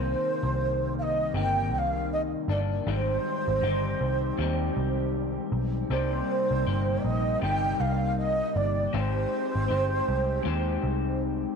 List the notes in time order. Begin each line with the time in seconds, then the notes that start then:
Already playing: C2 C3 D#3 G3 A#3 C4 G4 C5
0.43 C2
0.99 D#5 F5
1.34 G1 C3 D#3 A#3 G5
1.72 C2 G5
1.78 F5
2.13 D#5
2.48 G1 D#3 A#3 D4 D5
2.87 G#1 G#2 D#3 G3 C4 D#4 G4 C5
3.48 G#1
3.61 G1 D#3 G3 C4 D#4
4.01 C2
4.38 D#2 G#2 D#3 G3
4.42 C4 D#4
4.77 C2
5.52 B1
5.89 C2 C3 G3 A#3 C4 D#4 G4 C5 D5
6.51 C2
6.66 G1 A#3 D#4 G4
7.04 A#1 D#5
7.41 G1 C3 G3 A#3 D#4 G4 G5
7.80 C2 F5
8.18 D#5
8.56 G1 D5
8.93 G#1 G#3 C4 D#4 G4 C5 D5
8.98 C5
9.55 G#1
9.68 G1 C4 D#4 G4 C5
10.08 C2
10.43 D#2 G#3 C4 D#4 G4
10.48 C5
10.83 C2